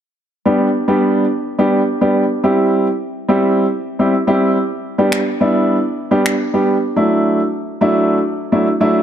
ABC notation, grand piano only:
X:1
M:4/4
L:1/16
Q:1/4=106
K:G
V:1 name="Grand piano"
z3 [G,B,DG]2 z [G,B,DG]3 z2 [G,B,DG]2 z [G,B,DG]2 | z [G,CEG]3 z3 [G,CEG]3 z2 [G,CEG] z [G,CEG]2 | z3 [G,B,DG]2 z [G,B,DE]3 z2 [G,B,DG]2 z [G,B,DG]2 | z [F,A,DE]3 z3 [F,A,DE]3 z2 [F,A,DE] z [F,A,DE]2 |]